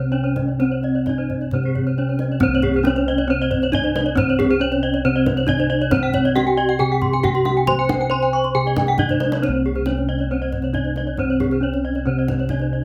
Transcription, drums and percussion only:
0.13 kendang slap
0.36 kendang high, kendang low
0.60 kendang high
0.72 kendang slap
0.83 kendang slap
1.06 kendang slap, kendang high, kendang low
1.30 kendang slap, kendang low
1.41 kendang slap
1.51 kendang low
1.64 kendang slap
1.75 kendang slap, kendang low
1.87 kendang slap
1.97 kendang slap
2.19 kendang slap, kendang high
2.40 kendang high, kendang low
2.62 kendang low
2.74 kendang slap
2.85 kendang high
2.97 kendang slap
3.18 kendang slap
3.51 kendang low
3.62 kendang slap
3.73 kendang low
3.85 kendang slap
3.96 kendang high
4.17 kendang low
4.40 kendang high, kendang low
4.51 kendang slap
4.72 kendang slap
4.94 kendang slap
5.26 kendang high, kendang low
5.37 kendang slap
5.48 kendang low
5.58 kendang slap
5.91 kendang high, kendang low
6.13 kendang low
6.25 kendang slap
6.36 kendang high
6.47 kendang slap
6.68 kendang slap
7.01 kendang low
7.13 kendang slap
7.24 kendang low
7.35 kendang slap
7.45 kendang high
7.67 kendang low
7.89 kendang high, kendang low
8.00 kendang slap
8.22 kendang slap
8.44 kendang slap
8.66 kendang slap
8.76 kendang high, kendang low
8.87 kendang slap
8.98 kendang low
9.09 kendang low
9.20 kendang high
9.32 kendang high
9.43 kendang high, kendang low
9.75 kendang slap
9.86 kendang high
9.97 kendang slap
10.19 kendang slap
10.52 kendang low
10.62 kendang slap
10.74 kendang low
10.85 kendang slap
10.96 kendang high
11.17 kendang low
11.40 kendang high, kendang low
11.51 kendang slap
11.74 kendang slap
11.95 kendang slap
12.28 kendang high, kendang low
12.39 kendang slap
12.49 kendang low
12.59 kendang slap

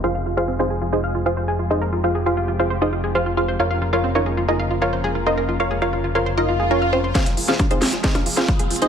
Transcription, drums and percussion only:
7.15 kick, snare, closed hi-hat
7.26 closed hi-hat
7.37 open hi-hat
7.48 snare, closed hi-hat
7.59 kick, closed hi-hat, percussion blips
7.71 closed hi-hat
7.82 snare, open hi-hat
7.93 closed hi-hat
8.04 kick, snare, closed hi-hat
8.15 closed hi-hat, percussion blips
8.26 open hi-hat
8.37 snare, closed hi-hat
8.48 kick, closed hi-hat
8.59 closed hi-hat
8.70 open hi-hat
8.76 closed hi-hat
8.82 closed hi-hat

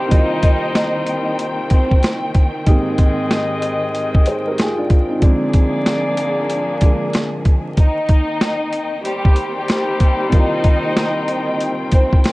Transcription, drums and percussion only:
0.11 kick, closed hi-hat
0.43 kick, closed hi-hat
0.75 snare, closed hi-hat
1.07 closed hi-hat
1.39 closed hi-hat
1.70 kick, closed hi-hat
1.91 kick
2.03 snare, closed hi-hat
2.35 kick, closed hi-hat
2.67 kick, closed hi-hat
2.98 kick, closed hi-hat
3.31 snare, closed hi-hat
3.62 closed hi-hat
3.94 closed hi-hat
4.14 kick
4.26 closed hi-hat
4.58 snare, closed hi-hat
4.90 kick, closed hi-hat
5.22 kick, closed hi-hat
5.53 kick, closed hi-hat
5.86 snare, closed hi-hat
6.17 closed hi-hat
6.50 closed hi-hat
6.81 kick, closed hi-hat
7.13 snare, closed hi-hat
7.45 kick, closed hi-hat
7.77 kick, closed hi-hat
8.09 kick, closed hi-hat
8.41 snare, closed hi-hat
8.73 closed hi-hat
9.05 closed hi-hat
9.25 kick
9.36 closed hi-hat
9.69 snare, closed hi-hat
10.00 kick, closed hi-hat
10.33 kick, closed hi-hat
10.64 kick, closed hi-hat
10.97 snare, closed hi-hat
11.28 closed hi-hat
11.60 closed hi-hat
11.91 kick, closed hi-hat
12.13 kick
12.24 snare, closed hi-hat

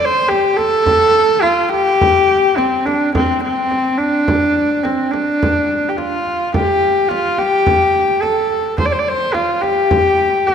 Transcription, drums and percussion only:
0.31 frame drum
0.59 frame drum
0.73 frame drum
0.86 frame drum
1.30 frame drum
1.44 frame drum
1.74 frame drum
2.01 frame drum
2.58 frame drum
2.87 frame drum
3.01 frame drum
3.15 frame drum
3.71 frame drum
4.00 frame drum
4.28 frame drum
4.85 frame drum
5.13 frame drum
5.28 frame drum
5.43 frame drum
5.84 frame drum
5.98 frame drum
6.26 frame drum
6.54 frame drum
7.11 frame drum
7.38 frame drum
7.53 frame drum
7.67 frame drum
8.10 frame drum
8.23 frame drum
8.50 frame drum
8.78 frame drum
9.34 frame drum
9.63 frame drum
9.77 frame drum
9.91 frame drum
10.35 frame drum
10.48 frame drum

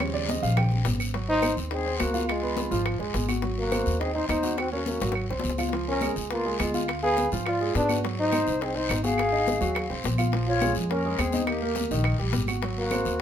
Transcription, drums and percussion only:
0.00 high bongo, high conga, long guiro, claves
0.15 high conga
0.29 high bongo, high conga, short guiro
0.43 high bongo, high conga, short guiro
0.57 high bongo, high conga, low conga, long guiro, claves
0.71 high bongo, high conga, low conga
0.85 high bongo, low bongo, high conga, short guiro
1.00 high bongo, short guiro, claves
1.14 high bongo, high conga, long guiro
1.29 high conga
1.42 high bongo, high conga, short guiro, claves
1.57 high conga, short guiro
1.71 high bongo, long guiro
1.86 high conga
2.00 high bongo, low bongo, high conga, short guiro, claves
2.14 high conga, short guiro
2.29 high bongo, high conga, long guiro, claves
2.43 high conga
2.57 high bongo, high conga, short guiro
2.71 high bongo, short guiro
2.86 high bongo, high conga, long guiro, claves
3.00 high bongo, high conga
3.14 high bongo, low bongo, high conga, short guiro
3.29 high bongo, high conga, short guiro, claves
3.42 high bongo, high conga, long guiro
3.58 high conga
3.72 high bongo, high conga, short guiro, claves
3.86 high conga, short guiro
4.00 high bongo, high conga, long guiro
4.15 high conga
4.29 high bongo, low bongo, high conga, short guiro, claves
4.43 high conga, short guiro
4.57 high bongo, high conga, long guiro, claves
4.72 high conga
4.86 high bongo, high conga, short guiro
5.00 high bongo, short guiro
5.12 high bongo, high conga, long guiro, claves
5.29 high bongo, high conga
5.39 low bongo, high conga
5.44 short guiro
5.49 low bongo
5.58 low bongo, high conga, short guiro, claves
5.69 low bongo, long guiro
5.73 high bongo, high conga
5.87 high conga
6.01 high bongo, high conga, short guiro, claves
6.16 high conga, short guiro
6.30 high bongo, high conga, long guiro
6.46 high conga
6.59 high bongo, low bongo, high conga, short guiro, claves
6.74 high conga, short guiro
6.88 high bongo, high conga, long guiro, claves
7.03 high conga
7.17 high bongo, high conga, short guiro
7.32 high bongo, short guiro
7.46 high bongo, high conga, long guiro, claves
7.61 high bongo, high conga
7.75 high bongo, low bongo, high conga, short guiro
7.89 high bongo, high conga, short guiro, claves
8.04 high bongo, high conga, long guiro
8.18 high conga
8.32 high bongo, high conga, short guiro, claves
8.47 high conga, short guiro
8.61 high bongo, high conga, long guiro
8.76 high conga
8.89 high bongo, low bongo, high conga, short guiro, claves
9.04 high conga, short guiro
9.18 high bongo, high conga, long guiro, claves
9.34 high conga
9.47 high bongo, high conga, short guiro
9.61 high bongo, short guiro
9.75 high bongo, high conga, long guiro, claves
9.90 high bongo, high conga
10.04 high bongo, low bongo, high conga, short guiro
10.18 high bongo, high conga, short guiro, claves
10.32 high bongo, high conga, long guiro
10.47 high conga
10.61 high bongo, high conga, short guiro, claves
10.75 high conga, short guiro
10.90 high bongo, high conga, long guiro
11.05 high conga
11.18 high bongo, low bongo, high conga, short guiro, claves
11.33 high conga, short guiro
11.47 high bongo, high conga, long guiro, claves
11.62 high conga
11.75 high bongo, high conga, short guiro
11.91 high bongo, short guiro
12.04 high bongo, high conga, long guiro, claves
12.19 high bongo, high conga
12.33 high bongo, low bongo, high conga, short guiro
12.47 high bongo, high conga, short guiro, claves
12.62 high bongo, high conga, long guiro
12.76 high conga
12.91 high bongo, high conga, short guiro, claves
13.05 high conga, short guiro

